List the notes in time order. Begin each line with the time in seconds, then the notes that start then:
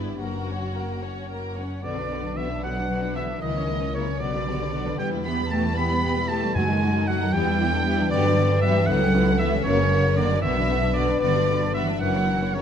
Already playing: G1 G2 B3 D4 E4 G4 B4 D5
0.20 F#1 F#2 A#3 F#4 A#4 A#5
0.47 C#4 C#5 F#5
0.75 A#3 F#4 A#4 A#5
1.02 C#4 A#4 C#5 F#5
1.30 A#3 A#4 C#5 A#5
1.57 C#4 F#4 C#5 F#5
1.83 B1 B2 D3 B3 F#4 D5
1.97 F#3 D4 B4
2.11 D3 B3 D4 F#4
2.24 F#3 D4 B4
2.36 D3 E3 F#3 B3 F#4 E5
2.49 F#3 D4 B4
2.63 D3 F#3 B3 F#4 B4 F#5
2.76 F#3 D4 B4
2.89 D3 F#3 B3 F#4
3.02 F#3 D4 B4
3.15 D3 E3 B3 F#4 E5
3.29 F#3 D4 B4
3.40 C#2 C#3 D#3 E3 A#3 E4 A#4 D#5
3.56 E3 C#4 C#5
3.68 E3 A#3 C#4 E4 A#4
3.81 E3 C#4 C#5
3.94 C#3 E3 A#3 E4 A#4 C#5
4.08 E3 C#4 C#5
4.19 B1 B2 D3 F#3 B3 F#4 D5
4.34 D3 F#3 D4 B4
4.46 F#3 B3 D4 F#4 G4
4.60 D3 F#3 D4 B4
4.73 F#3 B3 F#4 A4 B4
4.86 D3 F#3 D4 B4
4.98 E2 E3 G3 B3 G4 B4 G5
5.12 G3 E4 B4
5.24 E3 B3 E4 G4 B5
5.39 G3 E4 B4
5.51 B2 E3 A3 B3 G4 A5
5.65 G3 E4 B4
5.77 E3 B3 G4 B5
5.91 G3 E4 B4
6.04 B2 E3 B3 G4
6.17 G3 E4 B4
6.28 E3 A3 B3 G4 A5
6.44 G3 E4 B4
6.55 F#2 F#3 G#3 A3 D#4 F#4 G#5
6.70 D#3 F#3 D#4 A4
6.82 F#3 A3 D#4 F#4
6.96 D#3 F#3 D#4 A4
7.07 F#3 A3 F#4 A4 F#5
7.22 D#3 F#3 D#4 A4
7.32 E2 E3 G3 B3 E4 G4 G5
7.47 G3 D4 E4
7.59 E3 B3 D4 E4 G4 A4
7.74 G3 D4 E4
7.85 E3 B3 E4 G4 B4
7.99 G3 D4 E4
8.10 G2 D3 F#3 B3 F#4 G4 B4 D5
8.26 F#3 G3 D4 G4
8.37 F#3 B3 D4 F#4 G4
8.51 F#3 G3 D4 G4
8.62 E3 F#3 B3 F#4 G4 B4 E5
8.75 F#3 G3 D4 G4
8.86 C#2 C#3 E3 F#3 B3 E4 A4 F#5
8.90 B3
9.02 G3 C#4 G4
9.15 E3 B3 C#4 E4
9.27 G3 C#4 G4
9.39 E3 B3 E4 B4 E5
9.52 G3 C#4 G4
9.64 F#1 F#2 C#3 A#3 F#4 A#4 C#5
9.79 F#3 C#4 A#4
9.91 A#3 C#4 F#4
10.04 F#3 C#4 A#4
10.16 D3 A#3 F#4 A#4 D5
10.31 F#3 C#4 A#4
10.42 B1 B2 D3 E3 B3 F#4 B4 E5
10.56 F#3 D4 B4
10.69 D3 B3 D4 F#4
10.81 F#3 D4 B4
10.94 D3 B3 F#4 B4 D5
11.09 F#3 D4 B4
11.20 G1 G2 D3 G3 B3 F#4 B4 D5
11.35 F#3 G3 D4 D5
11.48 G3 B3 D4 F#4 B4
11.62 F#3 G3 D4 D5
11.74 E3 G3 B3 F#4 B4 E5
11.89 F#3 G3 D4 D5
12.00 F#1 F#2 E3 F#3 C#4 F#4 A#4 F#5
12.15 F#3 A#3 E4 C#5
12.28 E3 C#4 E4 F#4 A#4
12.41 F#3 A#3 E4 C#5
12.54 C#3 E3 C#4 F#4 A#4 C#5